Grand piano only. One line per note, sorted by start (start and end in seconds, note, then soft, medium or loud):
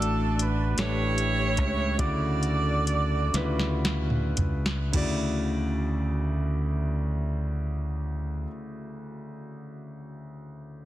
0.00 0.74 A2 medium
0.00 0.43 A3 medium
0.00 0.43 D4 medium
0.00 0.43 F#4 medium
0.00 0.44 D5 medium
0.78 1.95 A2 medium
0.78 1.61 A3 medium
0.78 1.61 D4 medium
0.78 1.61 G4 soft
0.78 1.61 B4 medium
1.99 2.91 C#3 medium
1.99 3.30 D3 medium
1.99 2.91 E4 medium
1.99 2.91 F#4 medium
1.99 2.91 D5 medium
3.34 4.41 C#3 medium
3.34 4.42 E4 medium
3.34 3.43 F4 soft
3.34 4.42 B4 medium
3.41 4.45 F#4 medium
4.92 8.46 D2 medium
4.92 8.44 C#3 medium
4.92 8.45 E4 medium
4.92 8.46 F#4 medium
4.92 8.48 D5 medium